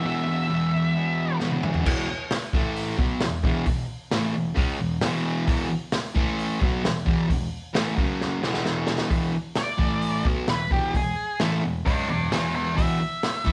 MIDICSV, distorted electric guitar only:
0, 0, Header, 1, 3, 480
1, 0, Start_track
1, 0, Key_signature, 4, "major"
1, 0, Tempo, 454890
1, 43, Time_signature, 4, 2, 24, 8
1, 14267, End_track
2, 0, Start_track
2, 0, Title_t, "Distorted electric guitar"
2, 0, Program_c, 0, 30
2, 28, Note_on_c, 0, 40, 92
2, 59, Note_on_c, 0, 47, 90
2, 71, Note_on_c, 0, 52, 90
2, 270, Note_off_c, 0, 52, 0
2, 282, Note_on_c, 0, 52, 65
2, 310, Note_off_c, 0, 47, 0
2, 323, Note_on_c, 0, 47, 65
2, 496, Note_off_c, 0, 40, 0
2, 508, Note_on_c, 0, 40, 99
2, 519, Note_off_c, 0, 47, 0
2, 531, Note_on_c, 0, 47, 101
2, 540, Note_off_c, 0, 52, 0
2, 553, Note_on_c, 0, 52, 113
2, 739, Note_off_c, 0, 52, 0
2, 752, Note_on_c, 0, 52, 73
2, 780, Note_off_c, 0, 47, 0
2, 793, Note_on_c, 0, 47, 54
2, 993, Note_off_c, 0, 40, 0
2, 1474, Note_on_c, 0, 40, 68
2, 1482, Note_off_c, 0, 47, 0
2, 1495, Note_on_c, 0, 47, 77
2, 1499, Note_off_c, 0, 52, 0
2, 1512, Note_on_c, 0, 52, 68
2, 1688, Note_off_c, 0, 52, 0
2, 1701, Note_on_c, 0, 52, 69
2, 1727, Note_off_c, 0, 47, 0
2, 1740, Note_on_c, 0, 47, 55
2, 1933, Note_off_c, 0, 40, 0
2, 1933, Note_off_c, 0, 52, 0
2, 1946, Note_on_c, 0, 40, 92
2, 1947, Note_off_c, 0, 47, 0
2, 1960, Note_on_c, 0, 47, 93
2, 1962, Note_on_c, 0, 52, 104
2, 2183, Note_off_c, 0, 40, 0
2, 2190, Note_off_c, 0, 47, 0
2, 2191, Note_off_c, 0, 52, 0
2, 2679, Note_on_c, 0, 45, 79
2, 2684, Note_on_c, 0, 52, 89
2, 2700, Note_on_c, 0, 57, 106
2, 3138, Note_off_c, 0, 45, 0
2, 3143, Note_on_c, 0, 47, 93
2, 3149, Note_off_c, 0, 52, 0
2, 3155, Note_on_c, 0, 54, 101
2, 3156, Note_off_c, 0, 57, 0
2, 3160, Note_on_c, 0, 59, 108
2, 3379, Note_off_c, 0, 47, 0
2, 3385, Note_off_c, 0, 54, 0
2, 3388, Note_off_c, 0, 59, 0
2, 3391, Note_on_c, 0, 40, 62
2, 3396, Note_on_c, 0, 47, 68
2, 3582, Note_off_c, 0, 40, 0
2, 3584, Note_off_c, 0, 47, 0
2, 3625, Note_on_c, 0, 40, 88
2, 3632, Note_on_c, 0, 47, 91
2, 3643, Note_on_c, 0, 52, 100
2, 3852, Note_off_c, 0, 40, 0
2, 3860, Note_off_c, 0, 47, 0
2, 3864, Note_on_c, 0, 40, 62
2, 3868, Note_off_c, 0, 52, 0
2, 3872, Note_on_c, 0, 47, 76
2, 4058, Note_off_c, 0, 40, 0
2, 4062, Note_off_c, 0, 47, 0
2, 4348, Note_on_c, 0, 45, 111
2, 4354, Note_on_c, 0, 52, 114
2, 4361, Note_on_c, 0, 57, 118
2, 4572, Note_on_c, 0, 40, 61
2, 4574, Note_off_c, 0, 45, 0
2, 4578, Note_on_c, 0, 47, 72
2, 4583, Note_off_c, 0, 52, 0
2, 4586, Note_off_c, 0, 57, 0
2, 4771, Note_off_c, 0, 40, 0
2, 4774, Note_off_c, 0, 47, 0
2, 4801, Note_on_c, 0, 49, 98
2, 4808, Note_on_c, 0, 56, 108
2, 4824, Note_on_c, 0, 61, 119
2, 5046, Note_off_c, 0, 49, 0
2, 5049, Note_off_c, 0, 56, 0
2, 5053, Note_on_c, 0, 40, 67
2, 5057, Note_off_c, 0, 61, 0
2, 5059, Note_on_c, 0, 47, 72
2, 5251, Note_off_c, 0, 40, 0
2, 5253, Note_off_c, 0, 47, 0
2, 5292, Note_on_c, 0, 40, 91
2, 5302, Note_on_c, 0, 47, 92
2, 5308, Note_on_c, 0, 52, 110
2, 5757, Note_off_c, 0, 40, 0
2, 5763, Note_off_c, 0, 47, 0
2, 5770, Note_on_c, 0, 40, 90
2, 5773, Note_off_c, 0, 52, 0
2, 5775, Note_on_c, 0, 47, 103
2, 5785, Note_on_c, 0, 52, 105
2, 5999, Note_off_c, 0, 40, 0
2, 6012, Note_off_c, 0, 47, 0
2, 6017, Note_off_c, 0, 52, 0
2, 6487, Note_on_c, 0, 45, 89
2, 6501, Note_on_c, 0, 52, 94
2, 6508, Note_on_c, 0, 57, 102
2, 6962, Note_off_c, 0, 45, 0
2, 6966, Note_on_c, 0, 47, 89
2, 6970, Note_off_c, 0, 52, 0
2, 6974, Note_on_c, 0, 54, 108
2, 6978, Note_off_c, 0, 57, 0
2, 6993, Note_on_c, 0, 59, 111
2, 7195, Note_off_c, 0, 47, 0
2, 7199, Note_on_c, 0, 40, 69
2, 7208, Note_on_c, 0, 47, 74
2, 7211, Note_off_c, 0, 54, 0
2, 7221, Note_off_c, 0, 59, 0
2, 7403, Note_off_c, 0, 40, 0
2, 7407, Note_off_c, 0, 47, 0
2, 7441, Note_on_c, 0, 40, 95
2, 7451, Note_on_c, 0, 47, 99
2, 7461, Note_on_c, 0, 52, 97
2, 7671, Note_off_c, 0, 40, 0
2, 7681, Note_off_c, 0, 47, 0
2, 7683, Note_on_c, 0, 40, 58
2, 7694, Note_off_c, 0, 52, 0
2, 7694, Note_on_c, 0, 47, 71
2, 7885, Note_off_c, 0, 40, 0
2, 7890, Note_off_c, 0, 47, 0
2, 8161, Note_on_c, 0, 45, 99
2, 8167, Note_on_c, 0, 52, 98
2, 8181, Note_on_c, 0, 57, 109
2, 8386, Note_on_c, 0, 42, 94
2, 8395, Note_off_c, 0, 45, 0
2, 8399, Note_on_c, 0, 49, 96
2, 8400, Note_off_c, 0, 52, 0
2, 8404, Note_on_c, 0, 54, 95
2, 8415, Note_off_c, 0, 57, 0
2, 8878, Note_off_c, 0, 42, 0
2, 8884, Note_off_c, 0, 49, 0
2, 8885, Note_on_c, 0, 40, 93
2, 8887, Note_off_c, 0, 54, 0
2, 8890, Note_on_c, 0, 47, 107
2, 8901, Note_on_c, 0, 52, 112
2, 9586, Note_off_c, 0, 40, 0
2, 9587, Note_off_c, 0, 47, 0
2, 9597, Note_off_c, 0, 52, 0
2, 9599, Note_on_c, 0, 40, 84
2, 9599, Note_on_c, 0, 47, 87
2, 9610, Note_on_c, 0, 52, 95
2, 9823, Note_off_c, 0, 40, 0
2, 9845, Note_off_c, 0, 47, 0
2, 9850, Note_off_c, 0, 52, 0
2, 10316, Note_on_c, 0, 45, 80
2, 10328, Note_on_c, 0, 52, 92
2, 10336, Note_on_c, 0, 57, 95
2, 10798, Note_off_c, 0, 45, 0
2, 10802, Note_on_c, 0, 47, 90
2, 10811, Note_off_c, 0, 52, 0
2, 10814, Note_off_c, 0, 57, 0
2, 10816, Note_on_c, 0, 54, 104
2, 10819, Note_on_c, 0, 59, 101
2, 11039, Note_off_c, 0, 47, 0
2, 11051, Note_on_c, 0, 47, 73
2, 11053, Note_on_c, 0, 40, 56
2, 11055, Note_off_c, 0, 54, 0
2, 11057, Note_off_c, 0, 59, 0
2, 11252, Note_off_c, 0, 47, 0
2, 11253, Note_off_c, 0, 40, 0
2, 11303, Note_on_c, 0, 40, 91
2, 11312, Note_on_c, 0, 47, 97
2, 11315, Note_on_c, 0, 52, 89
2, 11537, Note_off_c, 0, 40, 0
2, 11542, Note_off_c, 0, 47, 0
2, 11546, Note_off_c, 0, 52, 0
2, 11549, Note_on_c, 0, 40, 62
2, 11555, Note_on_c, 0, 47, 69
2, 11742, Note_off_c, 0, 40, 0
2, 11745, Note_off_c, 0, 47, 0
2, 12030, Note_on_c, 0, 45, 96
2, 12041, Note_on_c, 0, 52, 111
2, 12046, Note_on_c, 0, 57, 102
2, 12265, Note_off_c, 0, 45, 0
2, 12265, Note_on_c, 0, 40, 68
2, 12270, Note_off_c, 0, 52, 0
2, 12273, Note_off_c, 0, 57, 0
2, 12273, Note_on_c, 0, 47, 76
2, 12462, Note_off_c, 0, 40, 0
2, 12466, Note_off_c, 0, 47, 0
2, 12509, Note_on_c, 0, 49, 92
2, 12519, Note_on_c, 0, 56, 98
2, 12524, Note_on_c, 0, 61, 102
2, 12746, Note_off_c, 0, 49, 0
2, 12750, Note_off_c, 0, 56, 0
2, 12751, Note_on_c, 0, 40, 67
2, 12753, Note_off_c, 0, 61, 0
2, 12757, Note_on_c, 0, 47, 75
2, 12946, Note_off_c, 0, 40, 0
2, 12949, Note_off_c, 0, 47, 0
2, 12985, Note_on_c, 0, 40, 89
2, 12997, Note_on_c, 0, 47, 97
2, 13000, Note_on_c, 0, 52, 98
2, 13449, Note_off_c, 0, 40, 0
2, 13455, Note_off_c, 0, 47, 0
2, 13462, Note_on_c, 0, 40, 94
2, 13464, Note_off_c, 0, 52, 0
2, 13468, Note_on_c, 0, 47, 98
2, 13476, Note_on_c, 0, 52, 102
2, 13705, Note_off_c, 0, 40, 0
2, 13707, Note_off_c, 0, 47, 0
2, 13712, Note_off_c, 0, 52, 0
2, 14187, Note_on_c, 0, 45, 85
2, 14196, Note_on_c, 0, 52, 98
2, 14204, Note_on_c, 0, 57, 96
2, 14267, Note_off_c, 0, 45, 0
2, 14267, Note_off_c, 0, 52, 0
2, 14267, Note_off_c, 0, 57, 0
2, 14267, End_track
3, 0, Start_track
3, 0, Title_t, "Muted distorted electric guitar strokes"
3, 2207, Note_on_c, 9, 29, 64
3, 2312, Note_off_c, 9, 29, 0
3, 6011, Note_on_c, 9, 29, 61
3, 6117, Note_off_c, 9, 29, 0
3, 9836, Note_on_c, 9, 29, 62
3, 9942, Note_off_c, 9, 29, 0
3, 13721, Note_on_c, 9, 29, 63
3, 13826, Note_off_c, 9, 29, 0
3, 14267, End_track
0, 0, End_of_file